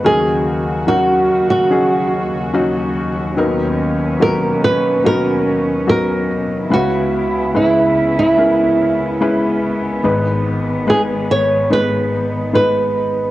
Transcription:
<<
  \new Staff \with { instrumentName = "Nylon-string guitar" } { \time 4/4 \key gis \minor \tempo 4 = 72 gis'4 fis'8. fis'4.~ fis'16 r8 | r4 ais'8 b'8 ais'4 ais'4 | fis'4 e'8. e'4.~ e'16 r8 | r4 gis'8 cis''8 b'4 b'4 | }
  \new Staff \with { instrumentName = "Grand piano" } { \time 4/4 \key gis \minor <fis cis' dis' ais'>4 <fis cis' dis' ais'>4 <fis cis' dis' gis'>4 <fis cis' dis' fis'>4 | <fis b dis' ais'>4 <fis b dis' fis'>4 <fis b dis' fis'>4 <fis b dis' fis'>4 | <gis cis' e' b'>4 <gis cis' e' b'>4 <gis cis' e' ais'>4 <gis cis' e' b'>4 | <gis b dis' b'>4 <gis b dis' b'>4 <gis b dis' b'>4 <gis b dis' b'>4 | }
  \new Staff \with { instrumentName = "Grand piano" } { \clef bass \time 4/4 \key gis \minor <dis, dis>1 | <dis, dis>1 | <cis, cis>1 | <gis,, gis,>1 | }
  \new Staff \with { instrumentName = "String section" } { \clef bass \time 4/4 \key gis \minor << { <cis fis'>1 | <b, cis'>1 | <b e'>1 | dis1 | } \\ { dis,1~ | dis,1 | cis1 | gis,1 | } >> }
>>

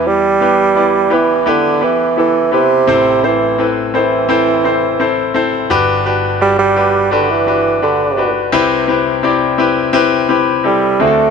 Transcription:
<<
  \new Staff \with { instrumentName = "Grand piano" } { \time 4/4 \key g \major \tempo 4 = 85 <b e' g' b'>8 <b e' g' b'>8 <b e' g' d''>8 <b e' g' b'>8 <b e' g' b'>8 <b e' g' b'>8 <b e' g' a'>8 <b e' g' b'>8 | <c' e' a' c''>8 <c' e' a' c''>8 <c' e' a' b'>8 <c' e' a' c''>8 <c' e' a' c''>8 <c' e' a' c''>8 <c' e' a' c''>8 <c' e' a' c''>8 | <d' fis' g' b'>8 <d' fis' g' b'>8 <d' fis' g' d''>8 <d' fis' g' b'>8 <d' fis' g' b'>8 <d' fis' g' b'>8 <d' fis' g' b'>8 <d' fis' g' b'>8 | <c' e' g' b'>8 <c' e' g' b'>8 <c' e' g' d''>8 <c' e' g' b'>8 <c' e' g' b'>8 <c' e' g' b'>8 <c' e' g' a'>8 <c' d' fis' gis' a'>8 | }
  \new Staff \with { instrumentName = "Grand piano" } { \clef bass \time 4/4 \key g \major <e, e>2.~ <e, e>8 r8 | <a,, a,>1 | <g,, g,>1 | <c, c>2.~ <c, c>8 <d, d>8 | }
  \new Staff \with { instrumentName = "Bassoon" } { \clef bass \time 4/4 \key g \major g4. e8 d8 e8 e8 c8~ | c8 e8 r8 e2 r8 | r4 g16 g8. d16 e8. d8. r16 | r2. g8 a8 | }
>>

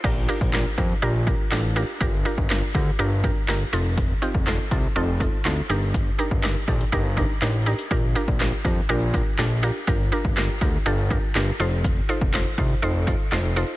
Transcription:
<<
  \new Staff \with { instrumentName = "Synth pluck" } { \time 4/4 \key bes \major \tempo 4 = 122 <d' f' g' bes'>8 <d' f' g' bes'>8 <d' f' g' bes'>8 <d' f' g' bes'>8 <d' f' g' bes'>8 <d' f' g' bes'>8 <d' f' g' a'>8 <d' f' g' bes'>8 | <d' f' g' bes'>8 <d' f' g' bes'>8 <d' f' g' bes'>8 <d' f' g' bes'>8 <d' f' g' bes'>8 <d' f' g' bes'>8 <d' f' g' bes'>8 <c' ees' f' a'>8~ | <c' ees' f' a'>8 <c' ees' f' g'>8 <c' ees' f' a'>8 <c' ees' f' a'>8 <c' ees' f' a'>8 <c' ees' f' a'>8 <c' ees' f' a'>8 <d' ees' g' bes'>8~ | <d' ees' g' bes'>8 <d' ees' g' bes'>8 <d' ees' g' bes'>8 <d' ees' g' a'>8 <d' ees' g' bes'>8 <d' ees' g' bes'>8 <d' ees' g' bes'>8 <d' ees' g' bes'>8 |
<d' f' g' bes'>8 <d' f' g' bes'>8 <d' f' g' bes'>8 <d' f' g' bes'>8 <d' f' g' bes'>8 <d' f' g' bes'>8 <d' f' g' a'>8 <d' f' g' bes'>8 | <d' f' g' bes'>8 <d' f' g' bes'>8 <d' f' g' bes'>8 <d' f' g' bes'>8 <d' f' g' a'>8 <d' f' g' bes'>8 <d' f' g' bes'>8 <ees' f' a' c''>8~ | <ees' f' a' c''>8 <ees' f' a' c''>8 <ees' f' a' c''>8 <ees' f' a' c''>8 <ees' f' a' c''>8 <ees' f' a' c''>8 <ees' f' a' c''>8 <ees' f' a' c''>8 | }
  \new Staff \with { instrumentName = "Analog synth bass" } { \clef bass \time 4/4 \key bes \major bes,,8. bes,,8. f,8 bes,,4 a,,4 | g,,8. g,,8. d,8 g,,4 g,,8 f,,8~ | f,,8. f,,8. c,8 f,,4 d,8 g,,8~ | g,,8. g,,8. bes,,8 g,,4 a,,4 |
bes,,8. bes,,8. f,8 bes,,4 bes,,4 | g,,8. g,,8. d,8 g,,4 g,,8 f,,8~ | f,,8. f,,8. c,8 f,,4 f,,4 | }
  \new DrumStaff \with { instrumentName = "Drums" } \drummode { \time 4/4 <cymc hh bd>8 hh16 bd16 <hc hh sn>8 <hh bd>8 hh8 <hh bd>8 <hc hh sn>8 hh8 | <hh bd>8 hh16 bd16 <hc hh sn>8 <hh bd>8 hh8 <hh bd>8 <hc hh sn>8 hh8 | <hh bd>8 hh16 bd16 <hc hh sn>8 <hh bd>8 hh8 <hh bd>8 <hc hh sn>8 hh8 | <hh bd>8 hh16 bd16 <hc hh sn>8 <hh bd>16 hh16 <hh bd>8 <hh bd>8 <hc hh sn>8 hh16 hh16 |
<hh bd>8 hh16 bd16 <hc hh sn>8 <hh bd>8 hh8 <hh bd>8 <hc hh sn>8 hh8 | <hh bd>8 hh16 bd16 <hc hh sn>8 <hh bd>8 hh8 <hh bd>8 <hc hh sn>8 hh8 | <hh bd>8 hh16 bd16 <hc hh sn>8 <hh bd>8 hh8 <hh bd>8 <hc hh sn>8 hh8 | }
>>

